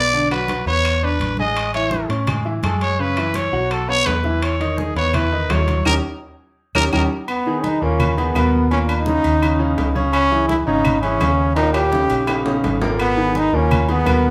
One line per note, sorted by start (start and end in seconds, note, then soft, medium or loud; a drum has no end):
0.00 0.61 B1 medium
0.00 0.29 D5 loud
0.13 0.28 D3 medium
0.13 0.28 D4 medium
0.13 0.28 D5 medium
0.13 high conga soft
0.31 0.60 F#3 medium
0.31 0.61 F#4 medium
0.31 0.64 B4 medium
0.31 0.61 F#5 medium
0.31 high conga soft
0.31 high timbale medium
0.31 claves medium
0.48 high conga loud
0.48 high timbale medium
0.66 1.16 E2 loud
0.66 0.96 B3 medium
0.66 0.96 B4 medium
0.66 1.06 C#5 loud
0.66 0.97 B5 medium
0.66 high conga soft
0.85 high conga soft
0.85 high timbale medium
0.85 claves medium
1.02 1.32 D4 medium
1.02 1.39 B4 medium
1.02 1.32 D5 medium
1.02 1.32 D6 medium
1.02 high conga soft
1.20 2.04 A1 loud
1.20 high conga medium
1.20 high timbale medium
1.37 1.68 G#3 medium
1.37 1.68 G#4 medium
1.37 1.72 D#5 loud
1.37 1.68 G#5 medium
1.37 high conga medium
1.55 high conga soft
1.55 high timbale loud
1.55 claves medium
1.74 2.04 E3 medium
1.74 2.04 E4 medium
1.74 2.07 C#5 medium
1.74 2.04 E5 medium
1.74 high conga soft
1.74 high timbale medium
1.91 high conga medium
2.09 2.59 A2 medium
2.09 2.24 C#4 medium
2.09 2.25 C#5 medium
2.09 2.25 C#6 medium
2.09 high conga soft
2.09 high timbale medium
2.27 2.42 G#3 medium
2.27 2.42 G#4 medium
2.27 2.43 G#5 medium
2.27 high conga soft
2.27 low conga medium
2.27 high timbale medium
2.27 claves medium
2.45 2.60 E3 medium
2.45 2.60 E4 medium
2.45 2.60 E5 medium
2.45 high conga soft
2.63 3.47 F#2 medium
2.63 2.93 G#3 medium
2.63 2.93 G#4 medium
2.63 2.81 A4 medium
2.63 2.94 G#5 medium
2.63 high conga medium
2.63 high timbale loud
2.63 claves medium
2.81 3.02 C#5 loud
2.81 high timbale medium
2.99 3.14 C#3 medium
2.99 3.14 C#4 medium
2.99 3.37 B4 medium
2.99 3.14 C#5 medium
2.99 high conga soft
3.17 3.47 E3 medium
3.17 3.47 E4 medium
3.17 3.47 E5 medium
3.17 high conga soft
3.17 high timbale medium
3.17 claves medium
3.34 3.74 C#5 medium
3.34 high conga loud
3.34 high timbale medium
3.52 4.03 B1 medium
3.52 3.82 F#3 medium
3.52 3.82 F#4 medium
3.52 3.82 F#5 medium
3.52 high conga soft
3.71 3.90 A4 medium
3.71 high conga soft
3.71 high timbale medium
3.71 claves medium
3.89 4.18 B3 medium
3.89 4.18 B4 medium
3.89 4.07 C#5 loud
3.89 4.18 B5 medium
3.89 high conga soft
4.06 4.90 E2 loud
4.06 4.45 B4 medium
4.06 high conga medium
4.06 high timbale medium
4.06 low timbale medium
4.24 4.54 E3 medium
4.24 4.54 E4 medium
4.24 4.54 E5 medium
4.24 high conga medium
4.42 4.80 C#5 loud
4.42 high conga soft
4.42 high timbale loud
4.42 claves medium
4.60 4.90 D#3 medium
4.60 4.90 D#4 medium
4.60 4.90 D#5 medium
4.60 high conga soft
4.60 high timbale medium
4.78 4.96 G#4 medium
4.78 high conga loud
4.95 5.46 E2 medium
4.95 5.11 B3 medium
4.95 5.11 B4 medium
4.95 5.16 C#5 loud
4.95 5.11 B5 medium
4.95 high conga soft
4.95 high timbale medium
5.13 5.28 E3 medium
5.13 5.29 E4 medium
5.13 5.53 B4 medium
5.13 5.29 E5 medium
5.13 high conga soft
5.13 low conga medium
5.13 high timbale medium
5.13 claves medium
5.32 5.47 D#3 medium
5.32 5.47 D#4 medium
5.32 5.47 D#5 medium
5.32 high conga soft
5.50 5.83 D#2 loud
5.50 5.79 F#3 medium
5.50 5.79 E4 medium
5.50 5.85 C#5 medium
5.50 5.79 E5 medium
5.50 high conga medium
5.50 high timbale loud
5.50 low timbale medium
5.50 claves medium
5.68 high conga medium
5.68 high timbale medium
5.85 5.99 D#2 medium
5.85 5.97 C#4 medium
5.85 5.97 D#4 loud
5.85 5.97 G4 medium
5.85 5.95 A#4 loud
5.85 high conga loud
5.85 high timbale loud
5.85 claves loud
6.75 6.88 D#2 loud
6.75 6.87 C#4 loud
6.75 6.87 D#4 loud
6.75 6.87 G4 loud
6.75 6.84 A#4 loud
6.75 high conga loud
6.75 high timbale loud
6.75 claves loud
6.92 7.06 D#2 medium
6.92 7.04 C#4 loud
6.92 7.05 D#4 loud
6.92 7.04 G4 loud
6.92 7.02 A#4 medium
6.92 high conga loud
6.92 high timbale loud
6.92 claves loud
7.28 7.66 B3 loud
7.28 high conga soft
7.28 low agogo loud
7.28 claves medium
7.46 7.76 D#3 medium
7.46 7.76 D#4 medium
7.46 7.76 G#4 medium
7.46 high conga soft
7.64 7.84 D#4 loud
7.64 high conga medium
7.64 low agogo medium
7.82 8.32 D#2 medium
7.82 8.11 A#2 medium
7.82 8.11 A#3 medium
7.82 8.17 C#4 loud
7.82 8.12 A#4 medium
7.82 high conga soft
8.00 high conga soft
8.00 low conga medium
8.00 low agogo loud
8.00 claves medium
8.17 8.32 D#3 medium
8.17 8.67 B3 medium
8.17 8.32 D#4 medium
8.17 8.33 G#4 medium
8.17 high conga soft
8.17 low agogo medium
8.35 9.18 D#2 medium
8.35 8.65 B2 medium
8.35 8.65 B3 medium
8.35 8.65 A#4 medium
8.35 high conga medium
8.35 low agogo loud
8.35 claves medium
8.71 9.01 A#2 medium
8.71 9.01 A#3 medium
8.71 8.79 C#4 loud
8.71 9.01 A#4 medium
8.71 high conga soft
8.71 low agogo loud
8.88 9.91 D#4 loud
8.88 high conga soft
8.88 low agogo loud
8.88 claves medium
9.06 9.36 C#3 medium
9.06 9.36 C#4 medium
9.06 9.37 D#4 medium
9.06 high conga loud
9.24 9.74 D#2 medium
9.24 high conga soft
9.24 low agogo medium
9.42 9.57 C#3 medium
9.42 9.57 C#4 medium
9.42 9.57 D#4 medium
9.42 high conga soft
9.42 low agogo loud
9.42 claves medium
9.59 9.89 C#3 medium
9.59 9.89 C#4 medium
9.59 9.89 D#4 medium
9.59 high conga soft
9.78 10.62 C#2 loud
9.78 high conga medium
9.78 low timbale medium
9.78 low agogo medium
9.95 10.25 C#3 loud
9.95 10.25 C#4 loud
9.95 10.25 C#5 loud
9.95 high conga medium
10.13 10.46 C#4 loud
10.13 high conga soft
10.13 low agogo loud
10.13 claves medium
10.31 10.61 E3 medium
10.31 10.61 E4 medium
10.31 10.61 G#4 medium
10.31 high conga soft
10.48 10.56 E4 loud
10.48 high conga loud
10.48 low agogo medium
10.66 11.17 G#1 medium
10.66 10.96 C#3 loud
10.66 10.96 C#4 medium
10.66 11.00 D#4 loud
10.66 10.97 C#5 medium
10.66 high conga soft
10.85 high conga soft
10.85 low conga medium
10.85 low agogo loud
10.85 claves medium
11.02 11.18 E3 medium
11.02 11.52 C#4 loud
11.02 11.18 E4 medium
11.02 11.18 G#4 medium
11.02 high conga soft
11.02 low agogo medium
11.20 12.04 D#2 medium
11.20 11.50 C#3 medium
11.20 11.51 C#4 medium
11.20 11.51 C#5 medium
11.20 high conga medium
11.20 low timbale medium
11.20 low agogo loud
11.20 claves medium
11.55 11.86 A#2 medium
11.55 11.86 A#3 medium
11.55 11.73 D#4 loud
11.55 11.86 A#4 medium
11.55 high conga soft
11.55 high timbale loud
11.55 low agogo medium
11.73 12.50 G4 loud
11.73 high timbale loud
11.73 low agogo loud
11.73 claves medium
11.92 12.22 C#3 medium
11.92 12.22 C#4 medium
11.92 12.22 D#4 medium
11.92 high conga loud
11.92 low timbale medium
12.10 12.60 A#1 loud
12.10 high conga soft
12.10 low agogo medium
12.27 12.43 C#3 medium
12.27 12.43 C#4 medium
12.27 12.43 D#4 medium
12.27 high conga soft
12.27 low timbale medium
12.27 low agogo loud
12.27 claves medium
12.45 12.75 C#3 medium
12.45 12.75 C#4 medium
12.45 12.75 D#4 medium
12.45 high conga soft
12.45 low timbale medium
12.64 13.48 G#1 loud
12.64 high conga medium
12.64 low timbale medium
12.64 low agogo medium
12.82 13.11 A#2 loud
12.82 13.11 A#3 medium
12.82 13.11 A#4 loud
12.82 high conga medium
12.82 low timbale loud
12.99 13.39 B3 loud
12.99 high conga soft
12.99 low agogo loud
12.99 claves medium
13.17 13.46 D#3 medium
13.17 13.47 D#4 medium
13.17 13.47 G#4 medium
13.17 high conga soft
13.35 13.57 D#4 loud
13.35 high conga loud
13.35 low agogo medium
13.53 14.03 D#2 medium
13.53 13.82 A#2 medium
13.53 13.82 A#3 medium
13.53 13.90 C#4 loud
13.53 13.83 A#4 medium
13.53 high conga soft
13.71 high conga soft
13.71 low conga medium
13.71 low agogo loud
13.71 claves medium
13.88 14.03 D#3 medium
13.88 14.30 B3 loud
13.88 14.04 D#4 medium
13.88 14.04 G#4 medium
13.88 high conga soft
13.88 low agogo medium
14.06 14.30 D#2 loud
14.06 14.30 B2 medium
14.06 14.30 B3 medium
14.06 14.30 A#4 medium
14.06 high conga medium
14.06 low agogo loud
14.06 claves medium